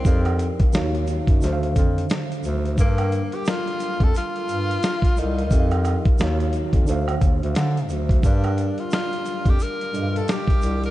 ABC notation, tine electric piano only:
X:1
M:4/4
L:1/8
Q:"Swing 16ths" 1/4=88
K:Gm
V:1 name="Tine electric piano"
[F,EGBf]2 [E,E_G_df]2 [=D,DAc=ef]4 | [G,DABf]6- [G,DABf] [G,ABdf] | [F,EGB=ef]2 [_E,E_G_df]2 [=D,DAcf]4 | [G,DGBf]4- [G,DGBf] [G,DABef]3 |]